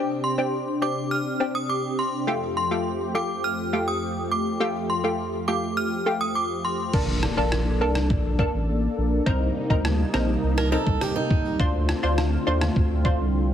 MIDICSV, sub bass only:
0, 0, Header, 1, 2, 480
1, 0, Start_track
1, 0, Tempo, 582524
1, 1875, Time_signature, 4, 2, 24, 8
1, 11155, End_track
2, 0, Start_track
2, 0, Title_t, "Sub bass"
2, 0, Program_c, 0, 38
2, 5715, Note_on_c, 0, 34, 113
2, 5994, Note_off_c, 0, 34, 0
2, 6075, Note_on_c, 0, 34, 95
2, 6436, Note_on_c, 0, 36, 98
2, 6448, Note_off_c, 0, 34, 0
2, 6676, Note_on_c, 0, 34, 99
2, 6688, Note_off_c, 0, 36, 0
2, 6954, Note_off_c, 0, 34, 0
2, 7037, Note_on_c, 0, 33, 90
2, 7315, Note_off_c, 0, 33, 0
2, 7397, Note_on_c, 0, 34, 90
2, 7582, Note_off_c, 0, 34, 0
2, 7635, Note_on_c, 0, 36, 115
2, 7821, Note_off_c, 0, 36, 0
2, 7995, Note_on_c, 0, 38, 95
2, 8274, Note_off_c, 0, 38, 0
2, 8355, Note_on_c, 0, 34, 96
2, 8541, Note_off_c, 0, 34, 0
2, 8595, Note_on_c, 0, 36, 111
2, 8874, Note_off_c, 0, 36, 0
2, 8953, Note_on_c, 0, 36, 93
2, 9047, Note_off_c, 0, 36, 0
2, 9555, Note_on_c, 0, 38, 112
2, 9834, Note_off_c, 0, 38, 0
2, 9915, Note_on_c, 0, 38, 90
2, 10194, Note_off_c, 0, 38, 0
2, 10276, Note_on_c, 0, 39, 97
2, 10462, Note_off_c, 0, 39, 0
2, 10515, Note_on_c, 0, 38, 100
2, 10876, Note_on_c, 0, 36, 89
2, 10888, Note_off_c, 0, 38, 0
2, 11154, Note_off_c, 0, 36, 0
2, 11155, End_track
0, 0, End_of_file